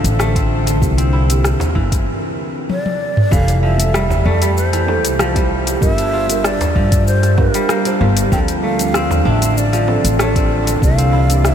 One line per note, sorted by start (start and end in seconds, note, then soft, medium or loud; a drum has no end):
0.00 0.82 D3 medium
0.00 0.83 F3 medium
0.00 0.87 F3 medium
0.00 0.19 A3 medium
0.00 0.35 C4 medium
0.00 0.83 C4 medium
0.00 0.84 D4 medium
0.00 0.93 D4 loud
0.00 2.06 D4 medium
0.00 0.82 F4 medium
0.00 0.84 A4 loud
0.00 1.82 C5 loud
0.00 2.07 E5 medium
0.04 0.82 A1 medium
0.04 closed hi-hat medium
0.04 cabasa medium
0.19 2.19 A3 medium
0.19 cross-stick loud
0.19 cabasa medium
0.35 0.97 C4 medium
0.35 kick medium
0.35 closed hi-hat soft
0.35 cabasa soft
0.67 closed hi-hat medium
0.67 darbuka ka medium
0.67 cabasa medium
0.81 1.52 C2 medium
0.81 2.07 C3 medium
0.81 1.25 E3 medium
0.81 1.25 A#3 medium
0.81 1.26 C4 medium
0.81 1.26 G4 loud
0.81 kick loud
0.81 cabasa medium
0.93 2.07 C4 medium
0.98 2.78 C4 medium
0.98 closed hi-hat soft
0.98 cabasa soft
1.13 2.69 E4 medium
1.13 darbuka ka soft
1.22 2.07 A#4 medium
1.27 3.27 E3 medium
1.27 3.28 A#3 medium
1.27 3.29 C4 medium
1.27 closed hi-hat medium
1.27 cabasa medium
1.32 3.29 G4 medium
1.45 cross-stick loud
1.45 cabasa medium
1.60 closed hi-hat soft
1.60 darbuka tek medium
1.60 darbuka dum medium
1.60 cabasa soft
1.75 2.07 G1 medium
1.75 3.30 E3 medium
1.75 kick medium
1.75 darbuka ka soft
1.92 kick medium
1.92 closed hi-hat medium
1.92 cabasa medium
2.69 3.34 D5 loud
2.69 high tom medium
2.86 high tom medium
3.17 mid tom medium
3.31 4.18 F1 medium
3.31 4.72 E3 medium
3.31 3.75 E3 medium
3.31 3.75 G3 medium
3.31 3.76 A4 loud
3.31 3.63 F5 loud
3.31 kick loud
3.31 cabasa medium
3.48 closed hi-hat soft
3.48 cabasa soft
3.63 5.18 F3 medium
3.63 4.27 E5 loud
3.63 darbuka ka soft
3.77 4.84 G3 medium
3.77 4.85 E4 medium
3.77 4.86 A4 medium
3.77 closed hi-hat medium
3.77 cabasa medium
3.83 6.82 G4 medium
3.94 4.41 G3 loud
3.94 cross-stick loud
3.94 cabasa medium
4.10 darbuka tek medium
4.10 darbuka dum medium
4.10 cabasa soft
4.25 5.04 F2 medium
4.25 6.25 A3 medium
4.25 4.56 D5 loud
4.25 darbuka ka medium
4.42 5.34 G3 medium
4.42 closed hi-hat medium
4.42 cabasa medium
4.57 5.46 C5 medium
4.57 cabasa medium
4.73 5.87 E3 medium
4.73 cross-stick soft
4.73 closed hi-hat soft
4.73 cabasa soft
4.87 5.31 G3 medium
4.87 5.31 E4 medium
4.87 5.32 A4 loud
4.87 darbuka tek medium
5.04 5.74 C2 medium
5.04 closed hi-hat medium
5.04 cabasa medium
5.19 5.87 F3 medium
5.19 cross-stick loud
5.19 cabasa medium
5.34 5.78 G3 medium
5.34 5.87 G3 medium
5.34 5.78 E4 medium
5.34 5.79 C5 loud
5.34 kick medium
5.34 closed hi-hat soft
5.34 cabasa soft
5.51 darbuka tek soft
5.67 closed hi-hat medium
5.67 darbuka ka medium
5.67 cabasa medium
5.81 6.52 G1 medium
5.81 6.25 G3 medium
5.81 8.32 G3 medium
5.81 6.25 D4 medium
5.81 6.26 F4 medium
5.81 6.26 A#4 loud
5.81 5.93 D#5 loud
5.81 kick loud
5.81 cabasa medium
5.93 6.46 E5 loud
5.98 7.66 D4 medium
5.98 closed hi-hat soft
5.98 cabasa soft
6.13 11.54 D4 medium
6.13 7.65 F4 medium
6.27 7.34 G3 medium
6.27 7.35 D4 medium
6.27 7.35 F4 medium
6.27 closed hi-hat medium
6.27 cabasa medium
6.31 7.36 A#4 medium
6.44 8.32 A#4 loud
6.44 7.06 D5 loud
6.44 cross-stick loud
6.44 cabasa medium
6.61 closed hi-hat soft
6.61 darbuka tek medium
6.61 darbuka dum medium
6.61 cabasa soft
6.76 7.46 G2 medium
6.76 8.31 F3 medium
6.76 kick medium
6.76 darbuka ka medium
6.92 8.32 F5 medium
6.92 kick loud
6.92 closed hi-hat soft
6.92 cabasa medium
7.07 7.40 C5 loud
7.07 cabasa medium
7.23 cross-stick soft
7.23 closed hi-hat soft
7.23 cabasa soft
7.38 7.81 G3 loud
7.38 7.82 D4 medium
7.38 7.82 F4 medium
7.38 8.01 A#4 medium
7.38 7.82 A#4 loud
7.38 kick loud
7.38 darbuka ka medium
7.38 darbuka tek medium
7.54 8.37 G3 medium
7.54 closed hi-hat medium
7.54 cabasa medium
7.69 8.69 A#3 loud
7.69 cross-stick loud
7.69 cabasa medium
7.85 8.28 G3 medium
7.85 8.28 D4 medium
7.85 9.25 D4 medium
7.85 8.28 F4 medium
7.85 8.29 C5 loud
7.85 closed hi-hat soft
7.85 cabasa soft
8.01 8.22 G1 loud
8.01 9.52 F4 medium
8.01 darbuka ka medium
8.17 closed hi-hat medium
8.17 cabasa medium
8.31 9.18 D2 loud
8.31 10.82 D3 medium
8.31 8.75 F3 medium
8.31 9.72 F3 medium
8.31 8.75 C4 medium
8.31 8.76 D4 medium
8.31 8.76 A4 loud
8.31 8.40 G5 loud
8.31 kick loud
8.31 cabasa medium
8.48 closed hi-hat soft
8.48 cabasa soft
8.63 10.19 A3 medium
8.63 9.26 F5 loud
8.63 darbuka ka soft
8.77 9.84 F3 medium
8.77 9.85 C4 medium
8.77 9.85 D4 medium
8.77 closed hi-hat soft
8.77 cabasa medium
8.81 9.86 A4 medium
8.94 9.41 C4 loud
8.94 cross-stick loud
8.94 cabasa medium
9.11 10.82 F4 loud
9.11 darbuka tek medium
9.11 darbuka dum loud
9.11 cabasa soft
9.16 11.54 C5 medium
9.25 9.96 A1 medium
9.25 10.93 D4 loud
9.25 9.31 F5 medium
9.25 darbuka ka medium
9.30 9.59 E5 loud
9.42 10.35 C4 medium
9.42 11.54 D5 medium
9.42 closed hi-hat medium
9.42 cabasa medium
9.58 10.20 D5 loud
9.58 cabasa medium
9.73 10.87 F3 medium
9.73 cross-stick soft
9.73 closed hi-hat soft
9.73 cabasa soft
9.87 10.31 F3 loud
9.87 10.31 C4 medium
9.87 10.32 D4 medium
9.87 10.32 A4 loud
9.87 darbuka tek medium
10.04 10.74 A1 medium
10.04 closed hi-hat medium
10.04 cabasa medium
10.19 11.54 A3 medium
10.19 10.78 D5 loud
10.19 cross-stick loud
10.19 cabasa medium
10.34 10.78 F3 medium
10.34 10.78 C4 medium
10.34 10.98 C4 medium
10.34 10.78 D4 medium
10.34 10.79 C5 loud
10.34 kick loud
10.34 closed hi-hat soft
10.34 cabasa soft
10.51 darbuka tek soft
10.67 closed hi-hat medium
10.67 darbuka ka medium
10.67 cabasa medium
10.81 11.52 C2 medium
10.81 11.54 C3 medium
10.81 11.25 E3 medium
10.81 11.25 A#3 medium
10.81 11.26 C4 medium
10.81 11.26 G4 loud
10.81 11.47 F5 loud
10.81 kick loud
10.81 cabasa medium
10.98 11.54 C4 medium
10.98 closed hi-hat soft
10.98 cabasa soft
11.12 11.54 C4 medium
11.12 11.54 E4 medium
11.12 11.54 A#4 medium
11.28 11.54 E3 medium
11.28 11.54 A#3 medium
11.28 11.54 C4 medium
11.28 closed hi-hat medium
11.28 cabasa medium
11.32 11.54 G4 medium
11.45 11.54 E5 loud
11.45 cross-stick loud
11.45 cabasa medium